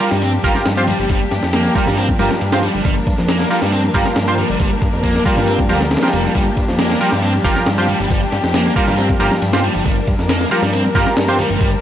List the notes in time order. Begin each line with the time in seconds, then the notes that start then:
Already playing: F3 G3 A#3 D4 G4
0.00 G3 F4 G4 A#4, ride
0.11 G2 G3, snare
0.22 C4, ride
0.44 G1 G3 F4 G4 A#4, kick, open hi-hat, high conga
0.55 G2 F4 G4 A#4, snare
0.66 G2, snare, ride
0.77 C4 F4 G4 C5
0.87 G3, ride, low conga
0.99 G1 G3
1.09 G1 G3, kick, ride
1.31 G2, snare, ride
1.43 F2, snare
1.53 A#3, snare, ride
1.65 snare
1.75 G3 F4 G4 A#4, kick, ride
1.86 G2 G3, snare, low conga
1.97 C4, ride
2.09 kick
2.19 G1 G3 F4 G4 A#4, ride, high conga
2.31 G2, snare
2.41 G2, ride
2.52 C4 F4 G4 C5, snare
2.63 G3, ride
2.74 G1 G3
2.84 G1 G3 A#4, kick, ride
3.07 G2, kick, ride
3.18 F2, snare
3.28 A#3, snare, ride
3.40 snare
3.50 G3 F4 G4 A#4, ride
3.62 G2 G3, snare
3.72 C4, ride
3.94 G1 G3 F4 G4 A#4, kick, open hi-hat, high conga
4.05 G2 F4 G4 A#4, snare
4.16 G2, snare, ride
4.27 C4 F4 G4 C5
4.38 G3, ride, low conga
4.49 G1 G3
4.60 G1 G3, kick, ride
4.82 G2, kick, ride
4.93 F2
5.03 A#3, kick, ride
5.15 snare
5.25 G3 F4 G4 A#4, kick, ride
5.37 G2 G3, snare, low conga
5.47 C4, ride
5.59 kick
5.69 D2 G3 F4 G4 A#4, ride, high conga
5.81 snare
5.91 snare, ride
5.97 snare, ride
6.03 C4 F4 G4 A#4, snare, ride
6.08 snare, ride
6.13 F1 G3, ride
6.24 G3, snare
6.35 G1 G3 G4, kick, ride
6.57 G2, kick, ride
6.68 F2, snare
6.79 A#3, snare, ride
6.90 snare
7.00 G3 F4 G4 A#4, ride, muted conga
7.12 G2 G3, snare
7.23 C4, ride
7.35 muted conga
7.44 G1 G3 F4 G4 A#4, kick, open hi-hat, high conga
7.56 G2 F4 G4 A#4, snare
7.66 G2, snare, ride
7.78 C4 F4 G4 C5
7.88 G3, ride, low conga
8.00 G1 G3, muted conga
8.10 G1 G3, kick, ride
8.32 G2, snare, ride
8.44 F2, snare, muted conga
8.54 A#3, snare, ride
8.66 snare
8.76 G3 F4 G4 A#4, kick, ride, muted conga
8.87 G2 G3, snare, low conga
8.98 C4, ride
9.09 kick
9.20 G1 G3 F4 G4 A#4, ride, high conga
9.31 G2, snare
9.42 G2, ride
9.53 C4 F4 G4 C5, snare
9.63 G3, ride
9.75 G1 G3
9.85 G1 G3 A#4, kick, ride
10.07 G2, kick, ride
10.19 F2, snare
10.29 A#3, snare, ride
10.41 snare
10.51 G3 F4 G4 A#4, ride, muted conga
10.63 G2 G3, snare
10.73 C4, ride
10.86 muted conga
10.95 G1 G3 F4 G4 A#4, kick, open hi-hat, high conga
11.06 G2 F4 G4 A#4, snare
11.17 G2, snare, ride
11.28 C4 F4 G4 C5
11.39 G3, ride, low conga
11.50 G1 G3, muted conga
11.61 G1 G3, kick, ride